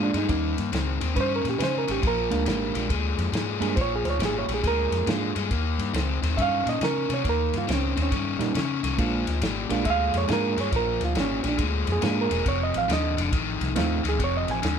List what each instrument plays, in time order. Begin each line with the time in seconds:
Already playing: fingered electric bass G#2, overdriven electric guitar A#2 G#3, reed electric piano G#3 A#3 F4
0.03 reed electric piano D4
0.13 fingered electric bass G2, overdriven electric guitar A#2 G#3, reed electric piano D#4, snare, ride
0.28 fingered electric bass D#2, overdriven electric guitar D#3 A#3, reed electric piano G3 A#3 C#4 D#4, kick, snare, ride
0.58 fingered electric bass G2, snare, ride
0.72 fingered electric bass C#2, overdriven electric guitar D#3 C4, snare, ride
1.01 fingered electric bass D#2, overdriven electric guitar D#3 C4, snare, ride
1.15 fingered electric bass G2, overdriven electric guitar D#3 C#4, reed electric piano B4, kick, snare, ride
1.21 reed electric piano C5
1.36 reed electric piano A#4
1.45 fingered electric bass A#2, snare, ride
1.49 reed electric piano G4
1.58 fingered electric bass C#3, overdriven electric guitar D#3 C#4, reed electric piano B4, snare, ride
1.64 reed electric piano C5
1.78 reed electric piano A#4
1.87 fingered electric bass G#1, overdriven electric guitar D#3 C#4, reed electric piano G4, snare, ride
2.02 fingered electric bass A#1, overdriven electric guitar A#2 F3, kick, snare, ride
2.07 reed electric piano A#4
2.30 fingered electric bass D2, reed electric piano G#3 A#3 D4 F4, snare, ride
2.45 fingered electric bass G#1, overdriven electric guitar A#2 G3, snare, ride
2.74 fingered electric bass A#1, overdriven electric guitar A#2 G3, snare, ride
2.89 fingered electric bass D2, overdriven electric guitar A#2 G#3, kick, snare, ride
3.18 fingered electric bass F2, snare, ride
3.32 fingered electric bass G#2, overdriven electric guitar A#2 G#3, snare, ride
3.60 fingered electric bass G2, overdriven electric guitar A#2 G#3, reed electric piano G#3 A#3 D4 G#4, snare, ride
3.76 fingered electric bass A#1, overdriven electric guitar A#2 F3, reed electric piano C5, kick, snare, ride
3.81 reed electric piano C#5
3.96 reed electric piano G#4
4.04 fingered electric bass D2, reed electric piano C5, snare, ride
4.10 reed electric piano C#5
4.19 fingered electric bass G#1, overdriven electric guitar A#2 G3, snare, ride
4.25 reed electric piano G#4
4.39 reed electric piano C#5
4.48 fingered electric bass A#1, overdriven electric guitar A#2 G3, snare, ride
4.54 reed electric piano G#4
4.63 fingered electric bass D2, overdriven electric guitar A#2 G#3, kick, snare, ride
4.67 reed electric piano A#4
4.91 fingered electric bass F2, snare, ride
5.06 fingered electric bass G#2, overdriven electric guitar A#2 G#3, reed electric piano G#3 A#3 D4 F4, snare, ride
5.35 fingered electric bass G2, overdriven electric guitar A#2 G#3, snare, ride
5.51 fingered electric bass D#2, overdriven electric guitar D#3 A#3, kick, snare, ride
5.78 fingered electric bass G2, snare, ride
5.93 fingered electric bass C#2, overdriven electric guitar D#3 C4, snare, ride
6.22 fingered electric bass D#2, overdriven electric guitar D#3 C4, snare, ride
6.37 fingered electric bass G2, overdriven electric guitar D#3 C#4, reed electric piano E5, kick, snare, ride
6.42 reed electric piano F5
6.66 fingered electric bass A#2, reed electric piano D#5, snare, ride
6.81 fingered electric bass C#3, overdriven electric guitar D#3 C#4, reed electric piano A#4, snare, ride
7.09 fingered electric bass C3, overdriven electric guitar D#3 C#4, snare, ride
7.14 reed electric piano C#5
7.24 fingered electric bass D#2, overdriven electric guitar D#3 A#3, kick, snare, ride
7.29 reed electric piano A#4
7.53 fingered electric bass G2, snare, ride
7.58 reed electric piano F4
7.67 fingered electric bass C#2, overdriven electric guitar D#3 C4, snare, ride
7.73 reed electric piano C#4
7.96 fingered electric bass D#2, overdriven electric guitar D#3 C4, snare, ride
8.02 reed electric piano C#4
8.10 fingered electric bass G2, overdriven electric guitar D#3 C#4, kick, snare, ride
8.39 fingered electric bass A#2, reed electric piano G3 A#3 C#4 D#4, snare, ride
8.54 fingered electric bass C#3, overdriven electric guitar D#3 C#4, snare, ride
8.83 fingered electric bass C2, overdriven electric guitar D#3 C#4, snare, ride
8.97 fingered electric bass A#1, overdriven electric guitar A#2 F3, reed electric piano G#3 A#3 D4 F4, kick, snare, ride
9.27 fingered electric bass D2, snare, ride
9.41 fingered electric bass G#1, overdriven electric guitar A#2 G3, snare, ride
9.69 fingered electric bass A#1, overdriven electric guitar A#2 G3, reed electric piano G#3 A#3 D4 F4, snare, ride
9.84 fingered electric bass D2, overdriven electric guitar A#2 G#3, reed electric piano E5, kick, snare, ride
9.90 reed electric piano F5
10.13 fingered electric bass F2, snare, ride
10.18 reed electric piano C#5
10.28 fingered electric bass G#2, overdriven electric guitar A#2 G#3, reed electric piano G#3 A#3 D4 F4, snare, ride
10.33 reed electric piano A#4
10.56 fingered electric bass G2, overdriven electric guitar A#2 G#3, snare, ride
10.61 reed electric piano C#5
10.71 fingered electric bass A#1, overdriven electric guitar A#2 F3, kick, snare, ride
10.76 reed electric piano A#4
11.00 fingered electric bass D2, snare, ride
11.05 reed electric piano F4
11.15 fingered electric bass G#1, overdriven electric guitar A#2 G3, snare, ride
11.20 reed electric piano C#4
11.43 fingered electric bass A#1, overdriven electric guitar A#2 G3, reed electric piano C#4, snare, ride
11.48 reed electric piano D4
11.57 fingered electric bass D2, overdriven electric guitar A#2 G#3, kick, snare, ride
11.87 fingered electric bass F2, snare, ride
11.92 reed electric piano G#4
12.01 fingered electric bass G#2, overdriven electric guitar A#2 G#3, reed electric piano G#3 A#3 D4 F4, snare, ride
12.21 reed electric piano A#4
12.29 fingered electric bass E1, overdriven electric guitar A#2 G#3, snare, ride
12.45 fingered electric bass F1, overdriven electric guitar F2 C3, reed electric piano C#5, kick, snare, ride
12.63 reed electric piano D#5
12.74 fingered electric bass A1, reed electric piano F5, snare, ride
12.88 fingered electric bass D#2, overdriven electric guitar F2 D3, snare, ride
12.93 reed electric piano D#5
13.17 fingered electric bass F1, overdriven electric guitar F2 D3, snare, ride
13.32 fingered electric bass A1, overdriven electric guitar F2 D#3, kick, snare, ride
13.61 fingered electric bass C2, snare, ride
13.75 fingered electric bass D#2, overdriven electric guitar F2 D#3, reed electric piano A3 C4 D#4 F4, snare, ride
14.03 fingered electric bass D2, overdriven electric guitar F2 D#3, snare, ride
14.09 reed electric piano G#4
14.19 fingered electric bass F1, overdriven electric guitar F2 C3, kick, snare, ride
14.24 reed electric piano C#5
14.37 reed electric piano D#5
14.48 fingered electric bass A1, reed electric piano G#5, snare, ride
14.62 fingered electric bass D#2, overdriven electric guitar F2 D3, snare, ride